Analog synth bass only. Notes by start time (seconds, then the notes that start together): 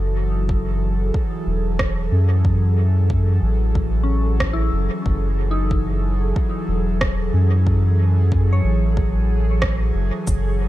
Already playing: F#1
1.47 E1
2.12 F#2
3.42 A1
4.73 F#1
5.06 F#1
6.68 E1
7.34 F#2
8.64 A1
9.95 F#1
10.27 F#1